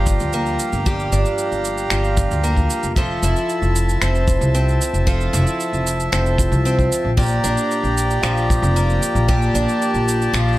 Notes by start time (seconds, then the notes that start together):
Already playing: G1 G2 F3 D4 G4 F5 A#5
0.06 kick, cabasa
0.20 D2, cabasa
0.33 A#3, cabasa
0.46 cabasa
0.59 cabasa
0.73 G1, cabasa
0.86 G2 G4, kick, cabasa
0.99 cabasa
1.12 G1 D4, cabasa
1.25 cabasa
1.38 cabasa
1.51 G1, cabasa
1.65 cabasa
1.78 cabasa
1.90 G1 F3, finger snap, cabasa
2.04 cabasa
2.17 kick, cabasa
2.31 D2, cabasa
2.44 A#3, cabasa
2.57 kick, cabasa
2.70 cabasa
2.83 F1, cabasa
2.95 F3 A4 E5 A5, kick, cabasa
3.23 F1 E4, cabasa
3.36 cabasa
3.49 cabasa
3.62 F1, cabasa
3.76 cabasa
3.89 cabasa
4.01 F1 C4, finger snap, cabasa
4.15 cabasa
4.28 kick, cabasa
4.41 C2, cabasa
4.54 C4, cabasa
4.69 cabasa
4.81 cabasa
4.93 F1, cabasa
5.07 F3 A4, kick, cabasa
5.21 cabasa
5.33 F1 E4, cabasa
5.47 cabasa
5.60 cabasa
5.73 F1, cabasa
5.87 cabasa
6.00 cabasa
6.12 F1 C4, finger snap, cabasa
6.26 cabasa
6.38 kick, cabasa
6.52 C2, cabasa
6.65 C4, cabasa
6.79 kick, cabasa
6.92 cabasa
7.04 A#1
7.17 A#2 G4 D5 A#5, kick, cabasa
7.21 cabasa
7.23 cabasa
7.26 cabasa
7.28 cabasa
7.31 cabasa
7.44 A#1 D4, cabasa
7.58 cabasa
7.71 cabasa
7.83 A#1, cabasa
7.98 cabasa
8.11 cabasa
8.23 A#1 F3, finger snap, cabasa
8.37 cabasa
8.50 kick, cabasa
8.62 F1, cabasa
8.76 A#3, cabasa
8.90 cabasa
9.03 cabasa
9.15 A#1, cabasa
9.28 A#2 G4 A5, kick, cabasa
9.42 cabasa
9.54 A#1 D4, cabasa
9.69 cabasa
9.82 cabasa
9.94 A#1, cabasa
10.08 cabasa
10.22 cabasa
10.33 A#1 F3, finger snap, cabasa
10.48 cabasa
10.52 cabasa